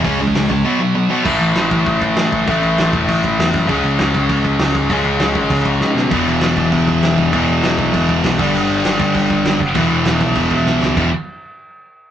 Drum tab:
CC |----------------|x-x-x-x-x-x-x-x-|x-x-x-x-x-x-x-x-|x-x-x-x-x-x-x-x-|
HH |o---o-----------|----------------|----------------|----------------|
SD |----o-----------|----o-------o---|----o-------o---|----o-------o---|
BD |o--o--o---------|o-----o-o-o---o-|o-----o-o-o---o-|o-----o-o-o---o-|

CC |x-x-x-x-x-x-----|x-x-x-x-x-x-x-x-|x-x-x-x-x-x-x-x-|x-x-x-x-x-x-x-x-|
HH |----------------|----------------|----------------|----------------|
SD |----o-------o-o-|----o-------o---|----o-------o---|----o-------o---|
BD |o-----o-o-o-----|o-----o-o-o---o-|o-----o-o-o---o-|------o-o-o---o-|

CC |x-x-x-x-x-x-----|x---------------|
HH |----------------|----------------|
SD |----o-------o-o-|----------------|
BD |o-----o-o-o-----|o---------------|